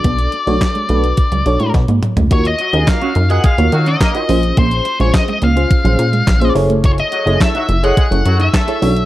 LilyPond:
<<
  \new Staff \with { instrumentName = "Lead electric guitar" } { \time 4/4 \key ges \major \tempo 4 = 106 d''2. r4 | des''16 ees''8. f''8. ges''16 f''8. ees''4~ ees''16 | c''8. des''16 ees''16 ees''16 f''2 r8 | des''16 ees''8. fes''8. ges''4 fes''4~ fes''16 | }
  \new Staff \with { instrumentName = "FM electric piano" } { \time 4/4 \key ges \major <d' fis' a' d''>8 r16 <d' fis' a' cis''>16 r8 <d' fis' a' b'>8 r8 <d' fis' a' cis''>8. r8. | <f' ges' bes' des''>16 r8 <f' ges' bes' ees''>8 r8 <f' ges' bes' ees''>16 r16 <f' ges' bes' des''>8 r8 <f' ges' bes' ees''>16 <des' f' aes' c''>8~ | <des' f' aes' c''>8 r16 <des' f' aes' c''>8 r8 <des' f' aes' c''>16 r16 <des' f' aes' c''>8 r8 <des' f' aes' c''>16 <fes' aes' a' des''>8~ | <fes' aes' a' des''>8 r16 <fes' aes' a' des''>8 r8 <fes' aes' a' des''>16 r16 <fes' aes' a' des''>8 r8 <fes' aes' a' des''>16 <d' fis' a' cis''>8 | }
  \new Staff \with { instrumentName = "Horn section" } { \time 4/4 \key ges \major r1 | r8 <ges ges'>16 <aes aes'>16 <bes bes'>16 <ges ges'>16 r16 <aes aes'>16 <aes aes'>16 r16 <ges ges'>8 <bes bes'>8 r8 | r1 | r8 <ges ges'>16 <aes aes'>16 <a a'>16 <ges ges'>16 r16 <aes aes'>16 <aes aes'>16 r16 <ges ges'>8 <a a'>8 r8 | }
  \new Staff \with { instrumentName = "Clean electric guitar" } { \time 4/4 \key ges \major b16 r8 a16 r16 aes16 a16 r8 fis16 r16 aes16 r16 bes16 r16 a16 | ees'16 r8 des'16 r16 des'16 ees'16 r8 bes16 r16 des'16 r16 ees'16 des'16 r16 | bes16 r8 aes16 r16 aes16 bes16 r8 ges16 r16 aes16 r16 bes16 r16 a16 | ges'16 r8 fes'16 r16 ees'16 fes'16 r8 des'16 r16 ees'16 r16 fes'16 cis'16 r16 | }
  \new Staff \with { instrumentName = "Analog synth bass" } { \clef bass \time 4/4 \key ges \major b,,8 r16 b,,16 r8 b,,8 r16 cis,16 b,,16 a,16 b,16 aes,16 r16 cis,16 | ees,8 r16 ees,16 r8 ges,8 r16 ees,16 ees8 r8 bes,,8 | bes,,8 r16 bes,,16 r8 des,8 r16 bes,,16 bes,8 bes,,8 ges,,8~ | ges,,8 r16 ges,,16 r8 ges,,8 r16 ges,,16 ges,8 r8 b,,8 | }
  \new DrumStaff \with { instrumentName = "Drums" } \drummode { \time 4/4 <hh bd>16 hh16 hh16 hh16 <hc hh bd sn>16 hh16 hh16 hh16 <hh bd>16 hh16 hh16 hh16 <hh bd sn>16 hh16 <hh toml>16 <hh tomfh>16 | <hh bd>16 hh16 hh16 hh16 <hc hh bd sn>16 hh16 hh16 hh16 <hh bd>16 hh16 hh16 hh16 <hc hh bd sn>16 hh16 hho16 hh16 | <hh bd>16 hh16 hh16 hh16 <hc hh bd sn>16 hh16 hh16 hh16 <hh bd>16 hh16 hh16 hh16 <hc hh bd sn>16 hh16 hho16 hh16 | <hh bd>16 hh16 hh16 hh16 <hc hh bd sn>16 hh16 hh16 hh16 <hh bd>16 hh16 hh16 hh16 <hc hh bd sn>16 hh16 hho16 hh16 | }
>>